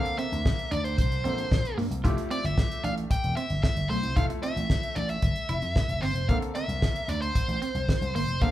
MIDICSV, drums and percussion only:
0, 0, Header, 1, 2, 480
1, 0, Start_track
1, 0, Tempo, 530973
1, 1846, Time_signature, 4, 2, 24, 8
1, 7695, End_track
2, 0, Start_track
2, 0, Title_t, "Drums"
2, 51, Note_on_c, 9, 42, 48
2, 141, Note_off_c, 9, 42, 0
2, 168, Note_on_c, 9, 42, 73
2, 258, Note_off_c, 9, 42, 0
2, 296, Note_on_c, 9, 42, 58
2, 386, Note_off_c, 9, 42, 0
2, 411, Note_on_c, 9, 36, 116
2, 414, Note_on_c, 9, 38, 113
2, 501, Note_off_c, 9, 36, 0
2, 504, Note_off_c, 9, 38, 0
2, 533, Note_on_c, 9, 42, 45
2, 623, Note_off_c, 9, 42, 0
2, 648, Note_on_c, 9, 42, 80
2, 739, Note_off_c, 9, 42, 0
2, 770, Note_on_c, 9, 42, 50
2, 861, Note_off_c, 9, 42, 0
2, 889, Note_on_c, 9, 36, 111
2, 890, Note_on_c, 9, 42, 98
2, 979, Note_off_c, 9, 36, 0
2, 980, Note_off_c, 9, 42, 0
2, 1011, Note_on_c, 9, 42, 50
2, 1101, Note_off_c, 9, 42, 0
2, 1132, Note_on_c, 9, 42, 72
2, 1223, Note_off_c, 9, 42, 0
2, 1249, Note_on_c, 9, 42, 47
2, 1340, Note_off_c, 9, 42, 0
2, 1370, Note_on_c, 9, 36, 123
2, 1374, Note_on_c, 9, 38, 115
2, 1460, Note_off_c, 9, 36, 0
2, 1464, Note_off_c, 9, 38, 0
2, 1493, Note_on_c, 9, 42, 43
2, 1584, Note_off_c, 9, 42, 0
2, 1615, Note_on_c, 9, 46, 70
2, 1706, Note_off_c, 9, 46, 0
2, 1731, Note_on_c, 9, 42, 58
2, 1822, Note_off_c, 9, 42, 0
2, 1849, Note_on_c, 9, 36, 120
2, 1851, Note_on_c, 9, 42, 75
2, 1940, Note_off_c, 9, 36, 0
2, 1942, Note_off_c, 9, 42, 0
2, 1969, Note_on_c, 9, 42, 50
2, 2060, Note_off_c, 9, 42, 0
2, 2088, Note_on_c, 9, 42, 76
2, 2179, Note_off_c, 9, 42, 0
2, 2213, Note_on_c, 9, 42, 56
2, 2304, Note_off_c, 9, 42, 0
2, 2329, Note_on_c, 9, 36, 118
2, 2329, Note_on_c, 9, 38, 104
2, 2419, Note_off_c, 9, 38, 0
2, 2420, Note_off_c, 9, 36, 0
2, 2455, Note_on_c, 9, 42, 48
2, 2545, Note_off_c, 9, 42, 0
2, 2570, Note_on_c, 9, 42, 78
2, 2660, Note_off_c, 9, 42, 0
2, 2690, Note_on_c, 9, 42, 46
2, 2780, Note_off_c, 9, 42, 0
2, 2808, Note_on_c, 9, 36, 109
2, 2808, Note_on_c, 9, 42, 102
2, 2898, Note_off_c, 9, 36, 0
2, 2899, Note_off_c, 9, 42, 0
2, 2927, Note_on_c, 9, 42, 48
2, 3017, Note_off_c, 9, 42, 0
2, 3047, Note_on_c, 9, 42, 71
2, 3138, Note_off_c, 9, 42, 0
2, 3164, Note_on_c, 9, 42, 44
2, 3254, Note_off_c, 9, 42, 0
2, 3286, Note_on_c, 9, 36, 113
2, 3286, Note_on_c, 9, 38, 117
2, 3376, Note_off_c, 9, 36, 0
2, 3376, Note_off_c, 9, 38, 0
2, 3404, Note_on_c, 9, 42, 47
2, 3495, Note_off_c, 9, 42, 0
2, 3529, Note_on_c, 9, 46, 70
2, 3619, Note_off_c, 9, 46, 0
2, 3648, Note_on_c, 9, 42, 62
2, 3738, Note_off_c, 9, 42, 0
2, 3766, Note_on_c, 9, 36, 118
2, 3767, Note_on_c, 9, 42, 75
2, 3857, Note_off_c, 9, 36, 0
2, 3857, Note_off_c, 9, 42, 0
2, 3887, Note_on_c, 9, 42, 49
2, 3977, Note_off_c, 9, 42, 0
2, 4005, Note_on_c, 9, 42, 72
2, 4096, Note_off_c, 9, 42, 0
2, 4133, Note_on_c, 9, 42, 56
2, 4223, Note_off_c, 9, 42, 0
2, 4247, Note_on_c, 9, 38, 113
2, 4248, Note_on_c, 9, 36, 112
2, 4338, Note_off_c, 9, 36, 0
2, 4338, Note_off_c, 9, 38, 0
2, 4367, Note_on_c, 9, 42, 49
2, 4457, Note_off_c, 9, 42, 0
2, 4483, Note_on_c, 9, 42, 74
2, 4574, Note_off_c, 9, 42, 0
2, 4602, Note_on_c, 9, 42, 46
2, 4692, Note_off_c, 9, 42, 0
2, 4722, Note_on_c, 9, 42, 96
2, 4724, Note_on_c, 9, 36, 110
2, 4812, Note_off_c, 9, 42, 0
2, 4814, Note_off_c, 9, 36, 0
2, 4843, Note_on_c, 9, 42, 50
2, 4933, Note_off_c, 9, 42, 0
2, 4963, Note_on_c, 9, 42, 72
2, 5053, Note_off_c, 9, 42, 0
2, 5080, Note_on_c, 9, 42, 42
2, 5171, Note_off_c, 9, 42, 0
2, 5205, Note_on_c, 9, 36, 109
2, 5207, Note_on_c, 9, 38, 116
2, 5296, Note_off_c, 9, 36, 0
2, 5297, Note_off_c, 9, 38, 0
2, 5326, Note_on_c, 9, 42, 46
2, 5417, Note_off_c, 9, 42, 0
2, 5448, Note_on_c, 9, 46, 68
2, 5538, Note_off_c, 9, 46, 0
2, 5565, Note_on_c, 9, 42, 57
2, 5656, Note_off_c, 9, 42, 0
2, 5686, Note_on_c, 9, 36, 110
2, 5687, Note_on_c, 9, 42, 68
2, 5776, Note_off_c, 9, 36, 0
2, 5777, Note_off_c, 9, 42, 0
2, 5806, Note_on_c, 9, 42, 52
2, 5897, Note_off_c, 9, 42, 0
2, 5925, Note_on_c, 9, 42, 72
2, 6015, Note_off_c, 9, 42, 0
2, 6049, Note_on_c, 9, 42, 53
2, 6139, Note_off_c, 9, 42, 0
2, 6168, Note_on_c, 9, 36, 105
2, 6169, Note_on_c, 9, 38, 108
2, 6259, Note_off_c, 9, 36, 0
2, 6259, Note_off_c, 9, 38, 0
2, 6289, Note_on_c, 9, 42, 49
2, 6380, Note_off_c, 9, 42, 0
2, 6407, Note_on_c, 9, 42, 82
2, 6498, Note_off_c, 9, 42, 0
2, 6529, Note_on_c, 9, 42, 47
2, 6620, Note_off_c, 9, 42, 0
2, 6648, Note_on_c, 9, 36, 102
2, 6649, Note_on_c, 9, 42, 102
2, 6738, Note_off_c, 9, 36, 0
2, 6739, Note_off_c, 9, 42, 0
2, 6770, Note_on_c, 9, 42, 47
2, 6861, Note_off_c, 9, 42, 0
2, 6891, Note_on_c, 9, 42, 73
2, 6981, Note_off_c, 9, 42, 0
2, 7007, Note_on_c, 9, 42, 43
2, 7097, Note_off_c, 9, 42, 0
2, 7129, Note_on_c, 9, 36, 103
2, 7133, Note_on_c, 9, 38, 113
2, 7219, Note_off_c, 9, 36, 0
2, 7224, Note_off_c, 9, 38, 0
2, 7252, Note_on_c, 9, 42, 44
2, 7342, Note_off_c, 9, 42, 0
2, 7374, Note_on_c, 9, 46, 68
2, 7464, Note_off_c, 9, 46, 0
2, 7489, Note_on_c, 9, 42, 60
2, 7580, Note_off_c, 9, 42, 0
2, 7607, Note_on_c, 9, 42, 65
2, 7608, Note_on_c, 9, 36, 109
2, 7695, Note_off_c, 9, 36, 0
2, 7695, Note_off_c, 9, 42, 0
2, 7695, End_track
0, 0, End_of_file